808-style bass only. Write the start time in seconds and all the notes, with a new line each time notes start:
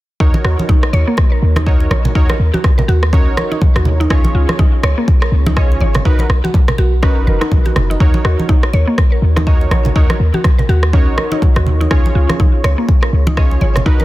0.20 D#2
0.45 D#2
0.93 D#2
1.42 D#2
1.91 A#1
2.15 D#2
2.40 D#2
2.88 D#2
3.27 A#1
3.76 D#2
4.10 C#2
4.35 C#2
4.83 C#2
5.32 C#2
5.81 G#1
6.05 B1
6.30 B1
6.79 B1
7.17 F#1
7.27 F#1
7.52 B1
7.76 F#1
8.00 D#2
8.25 D#2
8.74 D#2
9.22 D#2
9.71 A#1
9.96 D#2
10.20 D#2
10.69 D#2
11.07 A#1
11.56 D#2
11.91 C#2
12.15 C#2
12.64 C#2
13.13 C#2
13.62 G#1
13.86 B1